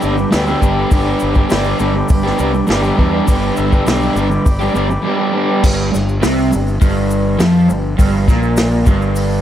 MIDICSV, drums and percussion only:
0, 0, Header, 1, 2, 480
1, 0, Start_track
1, 0, Key_signature, 1, "major"
1, 0, Tempo, 589391
1, 737, Time_signature, 4, 2, 24, 8
1, 7668, End_track
2, 0, Start_track
2, 0, Title_t, "Drums"
2, 17, Note_on_c, 9, 82, 77
2, 98, Note_off_c, 9, 82, 0
2, 147, Note_on_c, 9, 82, 29
2, 228, Note_off_c, 9, 82, 0
2, 262, Note_on_c, 9, 46, 58
2, 263, Note_on_c, 9, 38, 102
2, 265, Note_on_c, 9, 82, 80
2, 343, Note_off_c, 9, 46, 0
2, 344, Note_off_c, 9, 38, 0
2, 347, Note_off_c, 9, 82, 0
2, 382, Note_on_c, 9, 82, 29
2, 463, Note_off_c, 9, 82, 0
2, 505, Note_on_c, 9, 36, 72
2, 509, Note_on_c, 9, 82, 74
2, 586, Note_off_c, 9, 36, 0
2, 591, Note_off_c, 9, 82, 0
2, 742, Note_on_c, 9, 82, 80
2, 746, Note_on_c, 9, 36, 117
2, 751, Note_on_c, 9, 46, 55
2, 824, Note_off_c, 9, 82, 0
2, 828, Note_off_c, 9, 36, 0
2, 832, Note_off_c, 9, 46, 0
2, 975, Note_on_c, 9, 82, 77
2, 1056, Note_off_c, 9, 82, 0
2, 1097, Note_on_c, 9, 82, 29
2, 1108, Note_on_c, 9, 36, 86
2, 1178, Note_off_c, 9, 82, 0
2, 1190, Note_off_c, 9, 36, 0
2, 1222, Note_on_c, 9, 82, 92
2, 1234, Note_on_c, 9, 46, 66
2, 1235, Note_on_c, 9, 38, 119
2, 1303, Note_off_c, 9, 82, 0
2, 1315, Note_off_c, 9, 46, 0
2, 1316, Note_off_c, 9, 38, 0
2, 1335, Note_on_c, 9, 82, 26
2, 1417, Note_off_c, 9, 82, 0
2, 1460, Note_on_c, 9, 82, 71
2, 1541, Note_off_c, 9, 82, 0
2, 1699, Note_on_c, 9, 82, 91
2, 1712, Note_on_c, 9, 36, 127
2, 1716, Note_on_c, 9, 46, 65
2, 1780, Note_off_c, 9, 82, 0
2, 1793, Note_off_c, 9, 36, 0
2, 1798, Note_off_c, 9, 46, 0
2, 1843, Note_on_c, 9, 38, 33
2, 1925, Note_off_c, 9, 38, 0
2, 1943, Note_on_c, 9, 82, 77
2, 2025, Note_off_c, 9, 82, 0
2, 2069, Note_on_c, 9, 82, 26
2, 2151, Note_off_c, 9, 82, 0
2, 2176, Note_on_c, 9, 82, 76
2, 2198, Note_on_c, 9, 46, 53
2, 2199, Note_on_c, 9, 38, 102
2, 2258, Note_off_c, 9, 82, 0
2, 2280, Note_off_c, 9, 46, 0
2, 2281, Note_off_c, 9, 38, 0
2, 2310, Note_on_c, 9, 82, 28
2, 2392, Note_off_c, 9, 82, 0
2, 2433, Note_on_c, 9, 36, 74
2, 2514, Note_off_c, 9, 36, 0
2, 2669, Note_on_c, 9, 82, 86
2, 2674, Note_on_c, 9, 36, 99
2, 2680, Note_on_c, 9, 46, 56
2, 2750, Note_off_c, 9, 82, 0
2, 2756, Note_off_c, 9, 36, 0
2, 2761, Note_off_c, 9, 46, 0
2, 2789, Note_on_c, 9, 82, 27
2, 2871, Note_off_c, 9, 82, 0
2, 2905, Note_on_c, 9, 82, 81
2, 2986, Note_off_c, 9, 82, 0
2, 3033, Note_on_c, 9, 82, 29
2, 3034, Note_on_c, 9, 36, 78
2, 3114, Note_off_c, 9, 82, 0
2, 3115, Note_off_c, 9, 36, 0
2, 3150, Note_on_c, 9, 82, 92
2, 3158, Note_on_c, 9, 46, 63
2, 3159, Note_on_c, 9, 38, 119
2, 3231, Note_off_c, 9, 82, 0
2, 3239, Note_off_c, 9, 46, 0
2, 3240, Note_off_c, 9, 38, 0
2, 3274, Note_on_c, 9, 82, 27
2, 3355, Note_off_c, 9, 82, 0
2, 3391, Note_on_c, 9, 82, 82
2, 3472, Note_off_c, 9, 82, 0
2, 3513, Note_on_c, 9, 82, 28
2, 3594, Note_off_c, 9, 82, 0
2, 3632, Note_on_c, 9, 46, 58
2, 3632, Note_on_c, 9, 82, 90
2, 3633, Note_on_c, 9, 36, 120
2, 3713, Note_off_c, 9, 46, 0
2, 3714, Note_off_c, 9, 82, 0
2, 3715, Note_off_c, 9, 36, 0
2, 3753, Note_on_c, 9, 82, 28
2, 3835, Note_off_c, 9, 82, 0
2, 3872, Note_on_c, 9, 82, 73
2, 3953, Note_off_c, 9, 82, 0
2, 3996, Note_on_c, 9, 82, 28
2, 4078, Note_off_c, 9, 82, 0
2, 4590, Note_on_c, 9, 49, 127
2, 4592, Note_on_c, 9, 36, 98
2, 4594, Note_on_c, 9, 82, 91
2, 4671, Note_off_c, 9, 49, 0
2, 4673, Note_off_c, 9, 36, 0
2, 4676, Note_off_c, 9, 82, 0
2, 4836, Note_on_c, 9, 38, 35
2, 4841, Note_on_c, 9, 82, 87
2, 4917, Note_off_c, 9, 38, 0
2, 4922, Note_off_c, 9, 82, 0
2, 4957, Note_on_c, 9, 82, 31
2, 5038, Note_off_c, 9, 82, 0
2, 5072, Note_on_c, 9, 38, 114
2, 5072, Note_on_c, 9, 46, 79
2, 5074, Note_on_c, 9, 82, 88
2, 5153, Note_off_c, 9, 46, 0
2, 5154, Note_off_c, 9, 38, 0
2, 5155, Note_off_c, 9, 82, 0
2, 5196, Note_on_c, 9, 82, 29
2, 5278, Note_off_c, 9, 82, 0
2, 5314, Note_on_c, 9, 82, 80
2, 5396, Note_off_c, 9, 82, 0
2, 5439, Note_on_c, 9, 82, 29
2, 5521, Note_off_c, 9, 82, 0
2, 5552, Note_on_c, 9, 36, 120
2, 5552, Note_on_c, 9, 82, 91
2, 5555, Note_on_c, 9, 46, 73
2, 5633, Note_off_c, 9, 82, 0
2, 5634, Note_off_c, 9, 36, 0
2, 5636, Note_off_c, 9, 46, 0
2, 5786, Note_on_c, 9, 82, 72
2, 5868, Note_off_c, 9, 82, 0
2, 6026, Note_on_c, 9, 82, 94
2, 6029, Note_on_c, 9, 46, 61
2, 6030, Note_on_c, 9, 38, 120
2, 6107, Note_off_c, 9, 82, 0
2, 6110, Note_off_c, 9, 46, 0
2, 6111, Note_off_c, 9, 38, 0
2, 6268, Note_on_c, 9, 82, 83
2, 6350, Note_off_c, 9, 82, 0
2, 6508, Note_on_c, 9, 36, 111
2, 6508, Note_on_c, 9, 82, 97
2, 6511, Note_on_c, 9, 46, 64
2, 6589, Note_off_c, 9, 36, 0
2, 6590, Note_off_c, 9, 82, 0
2, 6592, Note_off_c, 9, 46, 0
2, 6746, Note_on_c, 9, 36, 114
2, 6750, Note_on_c, 9, 38, 35
2, 6750, Note_on_c, 9, 82, 82
2, 6827, Note_off_c, 9, 36, 0
2, 6831, Note_off_c, 9, 82, 0
2, 6832, Note_off_c, 9, 38, 0
2, 6864, Note_on_c, 9, 82, 29
2, 6946, Note_off_c, 9, 82, 0
2, 6978, Note_on_c, 9, 82, 101
2, 6985, Note_on_c, 9, 38, 123
2, 6985, Note_on_c, 9, 46, 66
2, 7059, Note_off_c, 9, 82, 0
2, 7066, Note_off_c, 9, 46, 0
2, 7067, Note_off_c, 9, 38, 0
2, 7101, Note_on_c, 9, 82, 27
2, 7183, Note_off_c, 9, 82, 0
2, 7217, Note_on_c, 9, 82, 78
2, 7222, Note_on_c, 9, 36, 106
2, 7298, Note_off_c, 9, 82, 0
2, 7304, Note_off_c, 9, 36, 0
2, 7345, Note_on_c, 9, 82, 28
2, 7426, Note_off_c, 9, 82, 0
2, 7456, Note_on_c, 9, 82, 95
2, 7461, Note_on_c, 9, 46, 73
2, 7538, Note_off_c, 9, 82, 0
2, 7542, Note_off_c, 9, 46, 0
2, 7668, End_track
0, 0, End_of_file